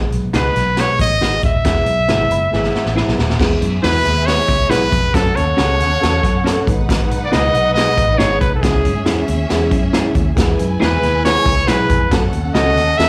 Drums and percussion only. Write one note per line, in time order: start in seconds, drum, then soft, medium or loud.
0.12 closed hi-hat medium
0.33 snare medium
0.33 closed hi-hat medium
0.56 snare soft
0.56 closed hi-hat medium
0.77 snare medium
0.77 closed hi-hat medium
0.99 kick medium
0.99 closed hi-hat medium
1.22 snare medium
1.22 closed hi-hat medium
1.42 kick medium
1.42 closed hi-hat medium
1.65 kick loud
1.65 snare loud
1.65 closed hi-hat medium
1.86 closed hi-hat medium
2.08 snare loud
2.08 closed hi-hat medium
2.31 closed hi-hat medium
2.53 snare soft
2.64 snare medium
2.75 snare medium
2.86 snare medium
2.97 snare medium
3.08 snare medium
3.19 snare medium
3.30 snare medium
3.40 kick loud
3.40 snare loud
3.40 crash medium
3.62 closed hi-hat medium
3.84 snare loud
3.84 closed hi-hat medium
4.05 snare soft
4.05 closed hi-hat medium
4.28 snare medium
4.28 closed hi-hat medium
4.48 kick medium
4.48 closed hi-hat medium
4.70 snare loud
4.70 closed hi-hat loud
4.92 kick medium
4.92 closed hi-hat medium
5.14 kick loud
5.14 snare loud
5.14 closed hi-hat medium
5.37 closed hi-hat medium
5.58 snare loud
5.58 closed hi-hat medium
5.80 snare soft
5.80 closed hi-hat medium
6.03 snare loud
6.03 closed hi-hat medium
6.23 kick medium
6.23 closed hi-hat medium
6.46 snare loud
6.46 closed hi-hat loud
6.67 kick medium
6.67 closed hi-hat medium
6.89 kick loud
6.89 snare loud
6.89 closed hi-hat medium
7.11 closed hi-hat medium
7.33 snare loud
7.33 closed hi-hat medium
7.54 closed hi-hat medium
7.77 snare medium
7.77 closed hi-hat medium
7.98 kick medium
7.98 closed hi-hat medium
8.19 snare loud
8.19 closed hi-hat medium
8.41 kick medium
8.41 closed hi-hat medium
8.63 kick loud
8.63 snare loud
8.63 closed hi-hat medium
8.85 closed hi-hat medium
9.06 snare loud
9.06 closed hi-hat medium
9.28 closed hi-hat medium
9.50 snare loud
9.50 closed hi-hat medium
9.71 kick medium
9.71 closed hi-hat medium
9.93 snare loud
9.93 closed hi-hat loud
10.15 kick medium
10.15 closed hi-hat medium
10.37 kick loud
10.37 snare loud
10.37 closed hi-hat medium
10.59 closed hi-hat medium
10.82 snare loud
10.82 closed hi-hat medium
11.03 snare soft
11.03 closed hi-hat medium
11.25 snare loud
11.25 closed hi-hat loud
11.46 kick medium
11.46 closed hi-hat medium
11.67 snare loud
11.67 closed hi-hat loud
11.89 kick medium
11.89 closed hi-hat medium
12.11 kick loud
12.11 snare loud
12.11 closed hi-hat loud
12.33 closed hi-hat medium
12.55 snare loud
12.55 closed hi-hat medium
12.77 snare soft
12.77 closed hi-hat medium
13.00 snare loud
13.00 closed hi-hat medium